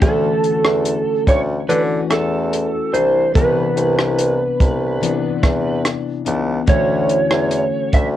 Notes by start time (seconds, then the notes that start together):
0.01 D2 D3 E3 A3 C#4 F#4 A4, kick, closed hi-hat
0.44 closed hi-hat
0.64 E2, cross-stick
0.85 closed hi-hat
1.27 D2 C#5, kick, closed hi-hat
1.68 D3 E3 A3 C#4 F#4 B4, closed hi-hat
2.10 E2 A4, cross-stick, closed hi-hat
2.53 closed hi-hat
2.93 C2 E3 D4 C5, closed hi-hat
3.34 C2 C3 E3 B3 D4 B4, kick, closed hi-hat
3.76 C2, closed hi-hat
3.99 cross-stick
4.18 closed hi-hat
4.60 C2, kick, closed hi-hat
5.01 C3 E3 B3 D4, closed hi-hat
5.43 E2, kick, cross-stick, closed hi-hat
5.85 cross-stick, closed hi-hat
6.25 C#2 E3 B3 D4, closed hi-hat
6.66 D2 D3 E3 A3 C#4 F#4 C#5, kick, closed hi-hat
7.09 closed hi-hat
7.31 E2, cross-stick
7.51 closed hi-hat
7.93 D2 E5, kick, closed hi-hat